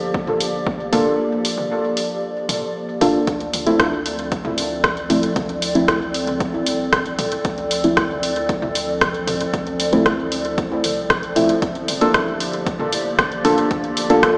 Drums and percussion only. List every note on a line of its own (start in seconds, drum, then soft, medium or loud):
0.14 kick loud
0.27 mid tom medium
0.40 open hi-hat medium
0.66 kick loud
0.66 high tom soft
0.93 mid tom medium
0.93 open hi-hat medium
1.45 open hi-hat medium
1.58 high tom soft
1.97 open hi-hat medium
2.49 mid tom medium
2.49 open hi-hat medium
2.49 high tom soft
3.01 mid tom medium
3.01 open hi-hat medium
3.27 kick loud
3.27 closed hi-hat medium
3.40 closed hi-hat soft
3.53 open hi-hat medium
3.53 high tom soft
3.67 closed hi-hat soft
3.80 kick loud
3.80 cross-stick medium
3.80 closed hi-hat medium
4.06 open hi-hat medium
4.19 closed hi-hat soft
4.32 kick loud
4.32 closed hi-hat medium
4.45 mid tom medium
4.45 high tom soft
4.58 open hi-hat medium
4.84 kick loud
4.84 cross-stick medium
4.84 closed hi-hat medium
4.97 closed hi-hat soft
5.10 mid tom medium
5.10 open hi-hat medium
5.23 closed hi-hat soft
5.36 kick loud
5.36 closed hi-hat medium
5.36 high tom soft
5.49 closed hi-hat soft
5.62 open hi-hat medium
5.75 closed hi-hat soft
5.88 kick loud
5.88 cross-stick medium
5.88 closed hi-hat medium
6.14 open hi-hat medium
6.27 closed hi-hat soft
6.27 high tom soft
6.40 kick loud
6.40 closed hi-hat medium
6.66 open hi-hat medium
6.93 kick loud
6.93 cross-stick medium
6.93 closed hi-hat medium
7.06 closed hi-hat soft
7.19 mid tom medium
7.19 open hi-hat medium
7.19 high tom soft
7.32 closed hi-hat soft
7.45 kick loud
7.45 closed hi-hat medium
7.58 closed hi-hat soft
7.71 open hi-hat medium
7.84 closed hi-hat soft
7.97 kick loud
7.97 cross-stick medium
7.97 closed hi-hat medium
8.10 high tom soft
8.23 open hi-hat medium
8.36 closed hi-hat soft
8.49 kick loud
8.49 closed hi-hat medium
8.62 mid tom medium
8.75 open hi-hat medium
9.01 kick loud
9.01 cross-stick medium
9.01 closed hi-hat medium
9.01 high tom soft
9.14 closed hi-hat soft
9.27 mid tom medium
9.27 open hi-hat medium
9.41 closed hi-hat soft
9.54 kick loud
9.54 closed hi-hat medium
9.67 closed hi-hat soft
9.80 open hi-hat medium
9.93 closed hi-hat soft
9.93 high tom soft
10.06 kick loud
10.06 cross-stick medium
10.06 closed hi-hat medium
10.32 open hi-hat medium
10.45 closed hi-hat soft
10.58 kick loud
10.58 closed hi-hat medium
10.84 open hi-hat medium
10.84 high tom soft
11.10 kick loud
11.10 cross-stick medium
11.10 closed hi-hat medium
11.23 closed hi-hat soft
11.36 mid tom medium
11.36 open hi-hat medium
11.49 closed hi-hat soft
11.62 kick loud
11.62 closed hi-hat medium
11.75 closed hi-hat soft
11.88 open hi-hat medium
11.88 high tom soft
12.01 closed hi-hat soft
12.14 kick loud
12.14 cross-stick medium
12.14 closed hi-hat medium
12.40 open hi-hat medium
12.53 closed hi-hat soft
12.67 kick loud
12.67 closed hi-hat medium
12.80 mid tom medium
12.80 high tom soft
12.93 open hi-hat medium
13.19 kick loud
13.19 cross-stick medium
13.19 closed hi-hat medium
13.32 closed hi-hat soft
13.45 mid tom medium
13.45 open hi-hat medium
13.58 closed hi-hat soft
13.71 kick loud
13.71 closed hi-hat medium
13.71 high tom soft
13.84 closed hi-hat soft
13.97 open hi-hat medium
14.10 closed hi-hat soft
14.23 kick loud
14.23 cross-stick medium
14.23 closed hi-hat medium